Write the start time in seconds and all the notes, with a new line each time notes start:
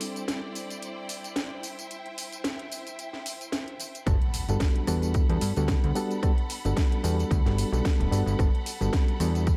Already playing: G3 C4 D4 E4 A4 C5 D5 G5
0.01 open hi-hat, tambourine
0.16 closed hi-hat, tambourine
0.28 snare, closed hi-hat, tambourine
0.55 open hi-hat, tambourine
0.70 closed hi-hat, tambourine
0.82 closed hi-hat, tambourine
1.09 open hi-hat, tambourine
1.24 closed hi-hat, tambourine
1.36 snare, closed hi-hat, tambourine
1.63 E5, open hi-hat, tambourine
1.79 closed hi-hat, tambourine
1.91 closed hi-hat, tambourine
2.06 closed hi-hat
2.18 open hi-hat, tambourine
2.32 closed hi-hat, tambourine
2.44 snare, closed hi-hat, tambourine
2.59 closed hi-hat
2.72 open hi-hat, tambourine
2.87 closed hi-hat, tambourine
2.99 closed hi-hat, tambourine
3.13 snare
3.26 open hi-hat, tambourine
3.41 closed hi-hat, tambourine
3.52 snare, closed hi-hat, tambourine
3.68 closed hi-hat
3.80 open hi-hat, tambourine
3.95 closed hi-hat, tambourine
4.06 G1 G3 B3 D4 F#4 A4 F#5 B5, kick, cross-stick, closed hi-hat, tambourine, impact
4.22 closed hi-hat
4.34 open hi-hat, tambourine
4.49 G1 G3 B3 D4 F#4 A4, closed hi-hat, tambourine
4.60 kick, snare, closed hi-hat, tambourine
4.76 closed hi-hat
4.87 E2 G3 B3 D4 F#4 A4, cross-stick, open hi-hat, tambourine
5.02 closed hi-hat, tambourine
5.14 kick, closed hi-hat, tambourine
5.29 E2 G3 B3 D4 F#4 A4, closed hi-hat
5.41 G2, open hi-hat, tambourine
5.56 D2 G3 B3 D4 F#4 A4, closed hi-hat, tambourine
5.68 kick, snare, closed hi-hat, tambourine
5.84 D2, closed hi-hat
5.95 G3 B3 D4 F#4 A4, open hi-hat, tambourine
6.11 closed hi-hat, tambourine
6.22 G3 B3 D4 F#4 A4, kick, cross-stick, closed hi-hat, tambourine
6.38 closed hi-hat
6.50 open hi-hat, tambourine
6.65 G1 G3 B3 D4 F#4 A4, closed hi-hat, tambourine
6.77 kick, snare, closed hi-hat, tambourine
6.92 closed hi-hat
7.03 E2 G3 B3 D4 F#4 A4, open hi-hat, tambourine
7.19 closed hi-hat, tambourine
7.31 D2, kick, closed hi-hat, tambourine
7.45 G1 G3 B3 D4 F#4 A4, snare, closed hi-hat
7.58 open hi-hat, tambourine
7.72 B1 G3 B3 D4 F#4 A4, closed hi-hat, tambourine
7.85 kick, snare, closed hi-hat, tambourine
7.99 D1, closed hi-hat
8.11 G1 G3 B3 D4 F#4 A4, open hi-hat, tambourine
8.26 G1, closed hi-hat, tambourine
8.38 G1 G3 B3 D4 F#4 A4, kick, cross-stick, closed hi-hat, tambourine
8.55 closed hi-hat
8.66 open hi-hat, tambourine
8.80 G1 G3 B3 D4 F#4 A4, closed hi-hat, tambourine
8.93 kick, snare, closed hi-hat, tambourine
9.08 closed hi-hat
9.19 E2 G3 B3 D4 F#4 A4, cross-stick, open hi-hat, tambourine
9.35 closed hi-hat, tambourine
9.47 kick, closed hi-hat, tambourine